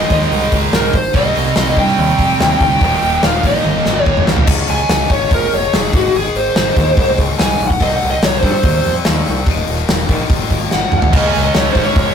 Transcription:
Already playing: overdriven electric guitar G#2 D#3 G#3, distorted electric guitar G#2 D#3 G#3
0.10 fingered electric bass D#2, lead electric guitar D#5, kick, open hi-hat
0.21 snare
0.31 fingered electric bass C2, open hi-hat
0.52 fingered electric bass C#2, kick, open hi-hat
0.73 fingered electric bass C2, lead electric guitar A#4, snare, open hi-hat
0.93 fingered electric bass G#1, lead electric guitar C5, kick, open hi-hat
1.13 fingered electric bass C2, overdriven electric guitar C3 G3 C4, lead electric guitar D#5, kick, open hi-hat
1.35 fingered electric bass C2, open hi-hat
1.55 fingered electric bass C2, snare, open hi-hat
1.76 fingered electric bass G2, overdriven electric guitar C3 G3 C4, lead electric guitar G5, kick, open hi-hat
1.88 snare
1.98 fingered electric bass D#2, open hi-hat
2.19 fingered electric bass F2, kick, open hi-hat
2.40 fingered electric bass D#2, snare, open hi-hat
2.60 fingered electric bass D2, lead electric guitar G5, kick, open hi-hat
2.81 fingered electric bass D#1, overdriven electric guitar D#2 A#2 D#3, kick, open hi-hat
3.02 fingered electric bass D#1, open hi-hat
3.23 fingered electric bass D#1, lead electric guitar F5, snare, open hi-hat
3.43 fingered electric bass A#1, overdriven electric guitar D#2 A#2 D#3, lead electric guitar D#5, kick, open hi-hat
3.55 snare
3.64 fingered electric bass G1, high tom
3.86 fingered electric bass G#1, snare
4.03 fingered electric bass G1, lead electric guitar C#5, kick
4.17 mid tom
4.27 fingered electric bass C2, snare
4.36 floor tom
4.47 fingered electric bass C#2, overdriven electric guitar C#3 G#3 C#4, kick, crash
4.68 fingered electric bass C#2, lead electric guitar G#5, open hi-hat
4.89 fingered electric bass C#2, snare, open hi-hat
5.10 fingered electric bass G#1, overdriven electric guitar C#3 G#3 C#4, lead electric guitar C#5, kick, open hi-hat
5.31 fingered electric bass F1, lead electric guitar A#4, kick, open hi-hat
5.52 fingered electric bass F1, lead electric guitar C#5, open hi-hat
5.73 fingered electric bass F1, lead electric guitar G#4, snare, open hi-hat
5.93 fingered electric bass G#1, overdriven electric guitar G#2 D#3 G#3, lead electric guitar F#4, kick, open hi-hat
6.14 fingered electric bass G#1, lead electric guitar G#4, open hi-hat
6.34 fingered electric bass G#1, lead electric guitar C5, open hi-hat
6.54 fingered electric bass G#1, overdriven electric guitar G#2 D#3 G#3, snare, open hi-hat
6.76 fingered electric bass D#2, kick, open hi-hat
6.97 fingered electric bass C2, kick, open hi-hat
7.18 fingered electric bass C#2, kick, open hi-hat
7.39 fingered electric bass C2, lead electric guitar G#5, snare, open hi-hat
7.60 fingered electric bass B1, open hi-hat
7.67 lead electric guitar F#5, kick
7.80 fingered electric bass C2, overdriven electric guitar C3 G3 C4, lead electric guitar D#5, kick, open hi-hat
7.96 lead electric guitar F#5
8.02 fingered electric bass C2, open hi-hat
8.10 lead electric guitar D#5
8.22 fingered electric bass C2, lead electric guitar C#5, snare, open hi-hat
8.38 lead electric guitar C5
8.43 fingered electric bass G2, overdriven electric guitar C3 G3 C4, kick, open hi-hat
8.53 lead electric guitar C5
8.63 fingered electric bass D#2, kick, open hi-hat
8.84 fingered electric bass F2, open hi-hat
9.05 fingered electric bass D#2, snare, open hi-hat
9.25 fingered electric bass C2, open hi-hat
9.45 fingered electric bass D#1, overdriven electric guitar D#2 A#2 D#3, kick, open hi-hat
9.68 fingered electric bass D#1, open hi-hat
9.88 fingered electric bass D#1, snare, open hi-hat
10.08 fingered electric bass A#1, overdriven electric guitar D#2 A#2 D#3, kick, open hi-hat
10.29 fingered electric bass G1, kick, open hi-hat
10.50 fingered electric bass G#1, kick, open hi-hat
10.71 fingered electric bass G1, lead electric guitar F#5, snare
10.92 fingered electric bass D#1, mid tom
10.98 lead electric guitar F#5, floor tom
11.12 fingered electric bass C#2, overdriven electric guitar C#3 G#3 C#4, lead electric guitar D#5, kick, open hi-hat, crash
11.28 lead electric guitar G#5
11.34 fingered electric bass C#2, open hi-hat
11.42 lead electric guitar D#5
11.54 fingered electric bass C#2, lead electric guitar C#5, snare, open hi-hat
11.70 overdriven electric guitar C#4, lead electric guitar C5
11.75 fingered electric bass G#1, overdriven electric guitar C#3 G#3, kick, open hi-hat
11.84 lead electric guitar C#5
11.96 fingered electric bass F1, kick, open hi-hat

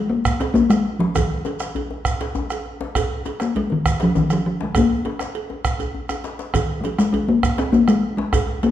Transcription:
0.09 talking drum A#3, djembe slap, djembe tone
0.25 bombo rim, bombo low, shekere
0.40 talking drum C4, bombo rim, cowbell, djembe slap, shekere
0.54 talking drum A#3, djembe tone, djembe bass, shekere
0.70 talking drum G#3, bombo rim, cowbell, shekere
0.85 bombo rim, djembe slap
0.99 talking drum F3, djembe slap, djembe tone
1.15 talking drum D#3, bombo rim, bombo low, cowbell, djembe slap, djembe bass, shekere
1.30 djembe slap
1.45 cowbell, djembe tone, shekere
1.60 bombo rim, djembe slap, shekere
1.75 cowbell, djembe bass
1.91 djembe slap, djembe tone
2.05 bombo rim, bombo low, shekere
2.20 bombo rim, cowbell, djembe slap, shekere
2.35 djembe tone, djembe bass, shekere
2.50 bombo rim, cowbell, shekere
2.66 bombo rim, djembe slap
2.81 djembe slap, djembe tone
2.95 bombo rim, bombo low, cowbell, djembe slap, djembe bass, shekere
3.10 djembe slap
3.25 cowbell, djembe slap, djembe tone, shekere
3.40 talking drum A#3, bombo rim, djembe slap, shekere
3.55 talking drum G#3, cowbell, djembe bass
3.70 talking drum D#3, djembe slap, djembe tone
3.86 bombo rim, bombo low, shekere
4.00 talking drum F3, bombo rim, cowbell, djembe slap, shekere
4.15 talking drum D#3, djembe tone, djembe bass, shekere
4.30 talking drum F3, bombo rim, cowbell, shekere
4.45 talking drum F3, bombo rim, djembe slap
4.61 talking drum G#3, djembe slap, djembe tone
4.75 talking drum A#3, bombo rim, bombo low, cowbell, djembe bass, shekere
4.90 bombo rim, djembe slap
5.05 cowbell, djembe tone
5.19 bombo rim, djembe slap, shekere
5.35 bombo rim, cowbell, djembe slap
5.50 djembe tone
5.65 bombo rim, bombo low, djembe slap, shekere
5.79 bombo rim, cowbell, djembe bass, shekere
5.95 djembe bass
6.09 bombo rim, cowbell, djembe bass, shekere
6.24 djembe slap, shekere
6.39 djembe slap, shekere
6.54 talking drum D#3, bombo rim, bombo low, cowbell, djembe slap, djembe bass, shekere
6.69 djembe slap
6.81 talking drum F3 G#3, djembe slap, djembe tone, shekere
6.85 cowbell
6.99 talking drum G#3, bombo rim, djembe slap, shekere
7.13 talking drum G#3, cowbell, djembe bass
7.28 talking drum A#3, djembe slap, djembe tone
7.43 bombo rim, bombo low, shekere
7.58 talking drum C4, bombo rim, cowbell, djembe slap, shekere
7.72 talking drum A#3, djembe bass, shekere
7.88 talking drum G#3, bombo rim, cowbell, shekere
8.03 bombo rim, djembe slap
8.17 talking drum G#3, djembe slap, djembe tone
8.33 bombo rim, bombo low, cowbell, djembe slap, djembe bass, shekere
8.48 djembe slap
8.63 talking drum A#3, cowbell, djembe slap, djembe tone, shekere

